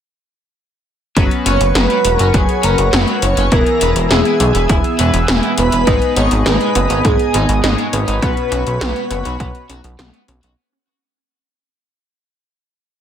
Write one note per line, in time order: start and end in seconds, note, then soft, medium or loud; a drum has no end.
1.17 1.29 F#1 loud
1.17 1.21 F#3 medium
1.17 2.90 F#3 medium
1.17 2.90 B3 medium
1.17 2.90 C#4 medium
1.17 2.90 F#4 medium
1.17 2.90 B4 medium
1.17 3.50 B4 medium
1.17 3.50 C#5 medium
1.17 3.50 F#5 medium
1.17 3.50 C#6 medium
1.17 kick loud
1.17 closed hi-hat medium
1.31 closed hi-hat soft
1.46 1.58 F#1 medium
1.46 1.57 C#4 medium
1.46 1.75 C#5 loud
1.46 closed hi-hat medium
1.61 1.73 F#1 medium
1.61 closed hi-hat medium
1.75 1.87 F#1 loud
1.75 1.83 F#3 medium
1.75 2.15 B4 loud
1.75 snare loud
1.75 closed hi-hat medium
1.90 1.97 F#3 medium
1.90 closed hi-hat soft
2.05 2.17 E1 medium
2.05 closed hi-hat medium
2.15 2.36 A#4 loud
2.19 2.32 F#1 medium
2.19 2.27 C#4 medium
2.19 closed hi-hat medium
2.34 2.46 F#1 loud
2.34 2.39 F#3 medium
2.34 2.66 G#4 loud
2.34 2.65 G#4 loud
2.34 kick loud
2.34 closed hi-hat medium
2.49 closed hi-hat soft
2.63 2.76 F#1 medium
2.63 2.75 C#4 medium
2.63 2.95 A#4 medium
2.63 2.95 A#4 loud
2.63 closed hi-hat medium
2.78 2.90 F#1 medium
2.78 closed hi-hat medium
2.93 3.05 F#1 loud
2.93 3.00 F#3 medium
2.93 3.48 F#3 medium
2.93 3.48 B3 medium
2.93 3.48 C#4 medium
2.93 3.48 F#4 medium
2.93 3.24 B4 loud
2.93 3.48 C#5 medium
2.93 snare loud
2.93 closed hi-hat medium
3.08 3.15 F#3 medium
3.08 closed hi-hat soft
3.22 3.35 F#1 medium
3.22 3.54 C#5 loud
3.22 closed hi-hat medium
3.37 3.49 F#1 medium
3.37 3.44 C#4 medium
3.37 closed hi-hat medium
3.52 3.64 E1 loud
3.52 4.95 E3 medium
3.52 4.95 B3 medium
3.52 10.54 B3 medium
3.52 3.56 E4 medium
3.52 4.95 E4 medium
3.52 4.95 G#4 medium
3.52 4.12 A#4 loud
3.52 4.13 A#4 loud
3.52 5.85 E5 medium
3.52 5.85 G#5 medium
3.52 5.85 E6 medium
3.52 kick loud
3.52 closed hi-hat medium
3.66 closed hi-hat soft
3.81 3.93 E1 medium
3.81 3.92 B4 medium
3.81 closed hi-hat medium
3.96 4.08 E1 medium
3.96 closed hi-hat medium
4.11 4.23 E1 loud
4.11 4.18 E4 medium
4.11 5.28 G#4 medium
4.11 5.29 G#4 medium
4.11 snare loud
4.11 closed hi-hat medium
4.25 4.33 E4 medium
4.25 closed hi-hat soft
4.40 4.52 B1 medium
4.40 closed hi-hat medium
4.55 4.67 E1 medium
4.55 4.62 B4 medium
4.55 closed hi-hat medium
4.69 4.82 E1 loud
4.69 4.74 E4 medium
4.69 kick loud
4.69 closed hi-hat medium
4.84 closed hi-hat soft
4.99 5.11 E1 medium
4.99 5.84 E3 medium
4.99 5.84 B3 medium
4.99 5.84 E4 medium
4.99 5.84 G#4 medium
4.99 5.10 B4 medium
4.99 5.84 B4 medium
4.99 closed hi-hat medium
5.14 5.26 E1 medium
5.14 closed hi-hat medium
5.28 5.40 E1 medium
5.28 5.36 E4 medium
5.28 snare loud
5.28 closed hi-hat medium
5.43 5.50 E4 medium
5.43 closed hi-hat soft
5.58 5.70 E1 medium
5.58 6.13 B4 loud
5.58 closed hi-hat medium
5.72 5.85 E1 medium
5.72 5.80 B4 medium
5.72 closed hi-hat medium
5.87 5.99 G#1 medium
5.87 7.60 G#2 medium
5.87 5.92 G#3 medium
5.87 7.60 B3 medium
5.87 6.15 D#4 loud
5.87 7.60 D#4 medium
5.87 7.60 G#4 medium
5.87 7.60 B4 medium
5.87 8.20 D#5 medium
5.87 8.20 G#5 medium
5.87 8.20 D#6 medium
5.87 kick loud
5.87 closed hi-hat medium
6.02 closed hi-hat soft
6.16 6.29 G#1 medium
6.16 6.42 B3 medium
6.16 6.28 D#4 medium
6.16 6.30 C#5 loud
6.16 closed hi-hat medium
6.31 6.43 G#1 medium
6.31 closed hi-hat medium
6.46 6.58 G#1 loud
6.46 6.71 G#3 loud
6.46 6.53 G#3 medium
6.46 7.06 B4 loud
6.46 7.07 B4 loud
6.46 snare loud
6.46 closed hi-hat medium
6.61 6.68 G#3 medium
6.61 closed hi-hat soft
6.75 6.88 F#1 medium
6.75 7.01 B3 loud
6.75 closed hi-hat medium
6.90 7.02 G#1 medium
6.90 6.97 D#4 medium
6.90 closed hi-hat medium
7.05 7.17 G#1 loud
7.05 7.09 G#3 medium
7.05 7.30 D#4 loud
7.05 7.64 G#4 medium
7.05 kick loud
7.05 closed hi-hat medium
7.19 closed hi-hat soft
7.34 7.46 G#1 medium
7.34 7.45 D#4 medium
7.34 7.62 G#4 medium
7.34 closed hi-hat medium
7.49 7.61 G#1 medium
7.49 closed hi-hat medium
7.64 7.76 G#1 loud
7.64 8.19 G#2 medium
7.64 7.71 G#3 medium
7.64 8.19 B3 medium
7.64 7.92 D#4 loud
7.64 8.19 D#4 medium
7.64 8.19 G#4 medium
7.64 8.19 C#5 medium
7.64 snare loud
7.64 closed hi-hat medium
7.78 7.86 G#3 medium
7.78 closed hi-hat soft
7.93 8.05 G#1 medium
7.93 8.18 B3 medium
7.93 10.24 B4 loud
7.93 closed hi-hat medium
8.08 8.20 G#1 medium
8.08 8.15 D#4 medium
8.08 closed hi-hat medium
8.22 8.35 B1 medium
8.22 9.66 B2 medium
8.22 8.27 B3 medium
8.22 8.47 B3 loud
8.22 9.66 B3 medium
8.22 9.66 C#4 medium
8.22 9.66 F#4 medium
8.22 9.66 B4 loud
8.22 10.56 C#5 medium
8.22 10.55 F#5 medium
8.22 10.55 C#6 medium
8.22 kick loud
8.22 closed hi-hat medium
8.37 closed hi-hat soft
8.52 8.64 B1 medium
8.52 8.77 C#4 loud
8.52 8.63 F#4 medium
8.52 closed hi-hat medium
8.67 8.79 B1 medium
8.67 closed hi-hat medium
8.81 8.93 B1 loud
8.81 8.89 B3 medium
8.81 9.06 F#4 loud
8.81 snare loud
8.81 closed hi-hat soft
8.96 9.03 B3 medium
8.96 closed hi-hat soft
9.10 9.23 F#1 medium
9.10 9.39 B4 medium
9.10 closed hi-hat medium
9.25 9.38 B1 medium
9.25 9.33 F#4 medium
9.25 closed hi-hat medium
9.40 9.52 B1 loud
9.40 9.44 B3 medium
9.40 9.68 F#4 loud
9.40 kick loud
9.40 closed hi-hat soft
9.55 closed hi-hat soft
9.69 9.82 B1 medium
9.69 9.95 C#4 medium
9.69 9.80 F#4 medium
9.69 closed hi-hat medium
9.84 9.96 B1 medium
9.84 closed hi-hat soft
9.99 10.11 B1 loud
9.99 10.06 B3 medium
9.99 10.24 B3 loud
9.99 snare loud
9.99 closed hi-hat medium
10.13 10.21 B3 medium
10.13 closed hi-hat soft
10.28 10.40 B1 medium
10.28 10.53 C#4 loud
10.28 closed hi-hat medium
10.43 10.55 B1 medium
10.43 10.50 F#4 medium
10.43 closed hi-hat medium